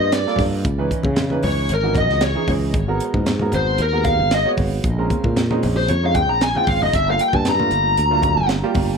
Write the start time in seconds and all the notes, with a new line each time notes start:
Already playing: G3 A#3 F4 C5 D#5
0.00 G2
0.12 D5, snare, closed hi-hat
0.27 G3 A#3 F4 A4, snare
0.36 G2, kick, snare, open hi-hat, low conga
0.65 C#2, kick, closed hi-hat
0.78 E3 C#4 D#4 B4
0.91 kick, closed hi-hat
1.03 C#3, kick, high conga
1.16 snare, closed hi-hat, low conga
1.30 E3 C#4 D#4 B4, high conga
1.43 C#2 C#5, open hi-hat, low conga
1.69 G#1, closed hi-hat
1.74 A#4
1.83 E3 C#4 D#4 F#4
1.95 D#5, kick, closed hi-hat, low conga
2.10 C#2, snare
2.21 C#5, snare, closed hi-hat
2.35 E3 C#4 D#4 G#4
2.48 C#2, kick, open hi-hat, low conga
2.74 G#1, kick, closed hi-hat
2.88 G#3 B3 F#4 A#4
3.00 closed hi-hat
3.14 G#2, kick, high conga
3.26 snare, closed hi-hat, low conga
3.39 G#3 B3 F#4 A#4, high conga
3.52 G#1 C5, closed hi-hat, low conga
3.78 D#2 A#4, closed hi-hat
3.92 G#3 B3 F#4 A#4
4.04 F5, kick, closed hi-hat, low conga
4.20 G#1
4.31 D#5, snare, closed hi-hat
4.45 G#3 B3 F#4 C#5
4.57 G#1, kick, open hi-hat, low conga
4.84 A#1, kick, closed hi-hat
4.98 G#3 C4 C#4 A#4
5.10 kick, closed hi-hat, high conga
5.24 A#2, kick, high conga
5.36 snare, closed hi-hat, low conga
5.50 G#3 C4 C#4 D#4, high conga
5.63 A#1, open hi-hat, low conga
5.77 C5
5.88 F2 C#5, closed hi-hat, high conga
6.03 G#3 C4 C#4 D#4 F5
6.15 G5, kick, closed hi-hat, low conga
6.29 A#1 A#5
6.41 G#5, snare, closed hi-hat
6.55 G#3 C4 C#4 F4 G5, high conga
6.67 G#1 F5, kick, open hi-hat, low conga
6.82 D#5, low conga
6.93 G1 E5, kick, closed hi-hat
7.08 G3 A#3 F4 A4 F5
7.19 G5, closed hi-hat
7.33 G2 A5, kick, high conga
7.45 A#5, snare, closed hi-hat, low conga
7.59 G3 A3 A#3 F4, high conga
7.71 G1, closed hi-hat
7.97 D2, closed hi-hat
8.10 G3 A3 A#3 F4
8.22 kick, closed hi-hat, low conga
8.37 G1
8.49 snare, closed hi-hat
8.63 G3 A#3 F4 G4
8.75 G1, kick, open hi-hat, low conga